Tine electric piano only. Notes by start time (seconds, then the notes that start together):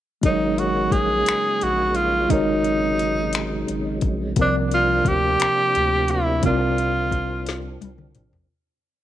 0.21 F#3 G#3 D#4 A#4
0.27 C#5
2.29 G#3 D#4 F#4 A#4
2.33 C#5
4.36 C3 F3 C4 A#4
4.41 C5
4.47 D5
6.42 C3 C4 F4 A#4
6.47 D5